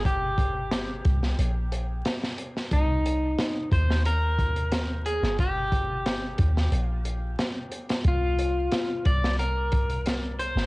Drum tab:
HH |x-x-x-x-x-x-x-x-|x-x-x-x-x-xxx-x-|x-x-x-x-x-x-x-xx|x-x-x-x-x-xxx-x-|
SD |----o--o----oo-o|----o--o----o--o|----o--o----o--o|----o--o----o--o|
BD |o-o---o---------|o-----o---o-----|o-o---o---------|o-----o---o-----|